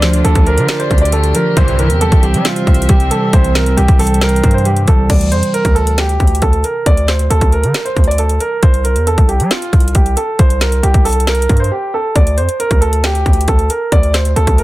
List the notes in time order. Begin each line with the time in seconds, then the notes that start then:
Already playing: D2 D3 A3 C4 D4 F4 G4 D5
0.02 F3 C5, snare, closed hi-hat
0.13 closed hi-hat
0.24 D2 A4, closed hi-hat
0.35 D2, kick, closed hi-hat
0.46 D4 A#4, closed hi-hat
0.58 D3, closed hi-hat
0.68 D5, snare, closed hi-hat
0.79 C5, closed hi-hat
0.91 D2 D4, kick, closed hi-hat
0.98 D5, closed hi-hat
1.05 closed hi-hat
1.12 A3 A4, closed hi-hat
1.24 closed hi-hat
1.34 F3 A#4, closed hi-hat
1.56 C2 G2 C3 E3 C4 C5 E5, kick, closed hi-hat
1.68 closed hi-hat
1.78 E3 A#4, closed hi-hat
1.90 E2, closed hi-hat
2.01 G3 A4, closed hi-hat
2.12 C2, kick, closed hi-hat
2.23 C4 G4, closed hi-hat
2.34 G3, closed hi-hat
2.45 F4 C5, snare, closed hi-hat
2.56 closed hi-hat
2.67 C2 C4, kick, closed hi-hat
2.74 closed hi-hat
2.82 closed hi-hat
2.89 C2 G3 G4, kick, closed hi-hat
3.00 closed hi-hat
3.11 E3 A4, closed hi-hat
3.33 C2 C3 C5, kick, closed hi-hat
3.44 closed hi-hat
3.55 E3 A#4, snare, closed hi-hat
3.66 closed hi-hat
3.77 C2 G3 G4, closed hi-hat
3.88 C2, kick, closed hi-hat
3.99 C4 A4, closed hi-hat, open hi-hat
4.07 closed hi-hat
4.14 closed hi-hat
4.21 A#4 C5, snare, closed hi-hat
4.29 closed hi-hat
4.36 closed hi-hat
4.44 G2 C4, kick, closed hi-hat
4.51 C5, closed hi-hat
4.58 closed hi-hat
4.65 G3 G4, closed hi-hat
4.77 closed hi-hat
4.88 C2 E3 A4, kick, closed hi-hat
5.10 D2 D5, kick, closed hi-hat, crash
5.21 closed hi-hat
5.32 F2 C5, closed hi-hat
5.43 closed hi-hat
5.54 A#4, closed hi-hat
5.65 D2, kick, closed hi-hat
5.75 A4, closed hi-hat
5.87 closed hi-hat
5.98 G4, snare, closed hi-hat
6.09 closed hi-hat
6.20 D2, kick, closed hi-hat
6.27 closed hi-hat
6.35 closed hi-hat
6.42 D2 A4, kick, closed hi-hat
6.53 closed hi-hat
6.64 A#4, closed hi-hat
6.86 D2 D5, kick, closed hi-hat
6.97 closed hi-hat
7.08 C5, snare, closed hi-hat
7.19 closed hi-hat
7.30 D2 A4, closed hi-hat
7.41 D2, kick, closed hi-hat
7.52 A#4, closed hi-hat
7.63 D3, closed hi-hat
7.74 snare, closed hi-hat
7.85 C5, closed hi-hat
7.97 D2, kick, closed hi-hat
8.04 D5, closed hi-hat
8.11 closed hi-hat
8.18 A4, closed hi-hat
8.29 closed hi-hat
8.40 A#4, closed hi-hat
8.63 C2 C5, kick, closed hi-hat
8.74 closed hi-hat
8.84 A#4, closed hi-hat
8.96 E2, closed hi-hat
9.07 A4, closed hi-hat
9.18 C2, kick, closed hi-hat
9.29 G4, closed hi-hat
9.40 G3, closed hi-hat
9.51 F4, snare, closed hi-hat
9.62 closed hi-hat
9.73 C2, kick, closed hi-hat
9.80 closed hi-hat
9.88 closed hi-hat
9.95 C2 G4, kick, closed hi-hat
10.06 closed hi-hat
10.17 A4, closed hi-hat
10.39 C2 C5, kick, closed hi-hat
10.50 closed hi-hat
10.61 A#4, snare, closed hi-hat
10.72 closed hi-hat
10.83 C2 G4, closed hi-hat
10.94 C2, kick, closed hi-hat
11.05 A4, closed hi-hat, open hi-hat
11.13 closed hi-hat
11.20 closed hi-hat
11.27 A#4, snare, closed hi-hat
11.35 closed hi-hat
11.42 closed hi-hat
11.49 G2, kick, closed hi-hat
11.57 C5, closed hi-hat
11.64 closed hi-hat
11.72 G4
11.94 A4
12.16 D2 D5, kick, closed hi-hat
12.27 closed hi-hat
12.37 F2 C5, closed hi-hat
12.49 closed hi-hat
12.60 A#4, closed hi-hat
12.71 D2, kick, closed hi-hat
12.81 A4, closed hi-hat
12.93 closed hi-hat
13.04 G4, snare, closed hi-hat
13.15 closed hi-hat
13.26 D2, kick, closed hi-hat
13.33 closed hi-hat
13.41 closed hi-hat
13.48 D2 A4, kick, closed hi-hat
13.59 closed hi-hat
13.70 A#4, closed hi-hat
13.92 D2 D5, kick, closed hi-hat
14.03 closed hi-hat
14.14 C5, snare, closed hi-hat
14.25 closed hi-hat
14.36 D2 A4, closed hi-hat
14.47 D2, kick, closed hi-hat
14.58 A#4, closed hi-hat